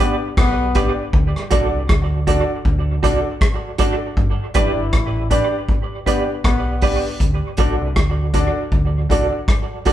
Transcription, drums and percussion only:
0.00 closed hi-hat
0.37 kick, cross-stick
0.75 kick, closed hi-hat
1.13 kick
1.36 cross-stick
1.51 kick, closed hi-hat
1.89 kick, cross-stick
2.27 kick, closed hi-hat
2.65 kick
3.03 kick, closed hi-hat
3.41 kick, cross-stick
3.78 kick, closed hi-hat
4.17 kick
4.54 kick, closed hi-hat
4.93 kick, cross-stick
5.31 kick, closed hi-hat
5.68 kick
6.06 kick, closed hi-hat
6.44 kick, cross-stick
6.81 kick, open hi-hat
7.20 kick, hi-hat pedal
7.57 kick, closed hi-hat
7.96 kick, cross-stick
8.34 kick, closed hi-hat
8.72 kick
9.10 kick, closed hi-hat
9.48 kick, cross-stick
9.85 kick, open hi-hat

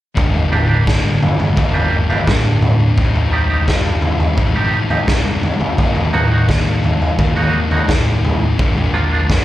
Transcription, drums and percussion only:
0.17 kick, floor tom
0.35 floor tom
0.52 mid tom
0.87 kick, snare
1.23 floor tom
1.40 floor tom
1.57 kick, floor tom
1.75 floor tom
2.10 floor tom
2.27 kick, snare, mid tom
2.62 floor tom, mid tom
2.98 kick, floor tom
3.16 floor tom
3.68 kick, snare, floor tom
4.02 floor tom
4.20 floor tom
4.37 kick, floor tom
4.90 floor tom
5.08 kick, snare
5.43 floor tom
5.61 floor tom
5.78 kick, floor tom
5.96 floor tom
6.13 mid tom
6.49 kick, snare
6.84 floor tom
7.02 floor tom
7.19 kick, floor tom
7.37 floor tom
7.71 floor tom
7.89 kick, snare, mid tom
8.25 floor tom, mid tom
8.59 kick, floor tom
8.77 floor tom
9.29 kick, snare, floor tom

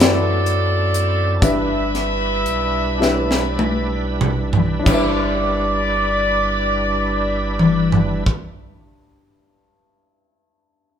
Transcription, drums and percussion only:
0.00 snare, closed hi-hat
0.46 closed hi-hat
0.94 closed hi-hat
1.42 kick, closed hi-hat
1.95 snare, closed hi-hat
2.46 closed hi-hat
3.02 snare
3.31 snare
3.59 high tom
4.21 mid tom
4.53 floor tom
4.86 kick, crash
7.59 mid tom
7.92 floor tom
8.26 kick

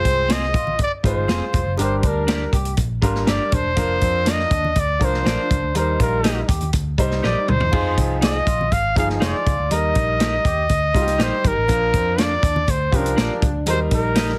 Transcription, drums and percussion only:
0.05 kick, closed hi-hat, muted conga
0.29 snare, closed hi-hat, high conga
0.42 snare
0.54 kick, closed hi-hat, muted conga
0.67 low conga
0.79 kick, closed hi-hat, muted conga
1.04 kick, closed hi-hat
1.28 snare, closed hi-hat, high conga
1.53 kick, closed hi-hat, high conga
1.78 closed hi-hat, muted conga
2.03 kick, closed hi-hat, muted conga
2.28 snare, closed hi-hat, high conga
2.53 kick, closed hi-hat
2.65 closed hi-hat
2.77 kick, closed hi-hat, muted conga
3.02 kick, closed hi-hat
3.15 snare
3.27 snare, closed hi-hat, high conga
3.52 kick, closed hi-hat, high conga
3.77 kick, closed hi-hat, muted conga
4.01 kick, closed hi-hat, muted conga
4.26 snare, closed hi-hat, high conga
4.39 snare
4.51 kick, closed hi-hat, muted conga
4.65 low conga
4.76 kick, closed hi-hat, muted conga
5.01 kick, closed hi-hat
5.14 snare
5.26 snare, closed hi-hat, high conga
5.51 kick, closed hi-hat, high conga
5.75 closed hi-hat, muted conga
6.00 kick, closed hi-hat, muted conga
6.24 snare, closed hi-hat, high conga
6.49 kick, closed hi-hat, muted conga
6.61 closed hi-hat, low conga
6.73 kick, closed hi-hat, muted conga
6.98 kick, closed hi-hat
7.11 snare
7.23 snare, high conga
7.48 mid tom, high conga
7.60 floor tom
7.73 kick, crash, muted conga
7.98 kick, closed hi-hat, muted conga
8.22 snare, closed hi-hat, high conga
8.47 kick, closed hi-hat, muted conga
8.61 low conga
8.72 kick, closed hi-hat, muted conga
8.96 kick, closed hi-hat
9.09 snare
9.22 snare, closed hi-hat, high conga
9.46 kick, closed hi-hat, high conga
9.71 closed hi-hat, muted conga
9.95 kick, closed hi-hat, muted conga
10.20 snare, closed hi-hat, high conga
10.45 kick, closed hi-hat, muted conga
10.69 kick, closed hi-hat, muted conga
10.95 kick, closed hi-hat
11.07 snare, closed hi-hat
11.19 snare, closed hi-hat, high conga
11.44 kick, closed hi-hat, high conga
11.68 kick, closed hi-hat, muted conga
11.94 kick, closed hi-hat, muted conga
12.18 snare, closed hi-hat, high conga
12.43 kick, closed hi-hat, muted conga
12.56 low conga
12.67 kick, closed hi-hat, muted conga
12.93 kick, closed hi-hat
13.06 closed hi-hat
13.18 snare, closed hi-hat, high conga
13.42 kick, closed hi-hat, high conga
13.66 closed hi-hat, muted conga
13.91 kick, closed hi-hat, muted conga
14.15 snare, closed hi-hat, high conga
14.28 snare

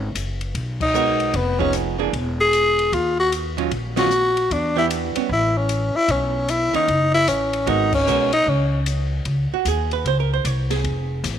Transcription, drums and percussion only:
0.15 hi-hat pedal, ride
0.41 ride
0.55 kick, ride
0.81 kick, crash
0.94 hi-hat pedal
1.20 ride
1.34 kick, ride
1.60 kick
1.73 hi-hat pedal, ride
2.13 kick, ride
2.53 hi-hat pedal, ride
2.79 ride
2.92 kick, ride
3.32 hi-hat pedal, ride
3.58 ride
3.71 kick, ride
3.97 snare, ride
4.11 hi-hat pedal
4.37 ride
4.50 kick, ride
4.91 hi-hat pedal, ride
5.16 ride
5.29 kick
5.69 hi-hat pedal, ride
6.08 kick, ride
6.49 hi-hat pedal, ride
6.74 ride
6.88 kick, ride
7.28 hi-hat pedal, ride
7.53 ride
7.67 kick, ride
7.93 kick, crash
8.07 hi-hat pedal
8.33 ride
8.46 kick
8.86 hi-hat pedal, ride
9.25 kick, ride
9.65 kick, hi-hat pedal, ride
9.91 ride
10.05 kick, ride
10.44 kick, hi-hat pedal, ride
10.70 snare, ride
10.84 kick, ride
11.24 kick, snare, hi-hat pedal, ride

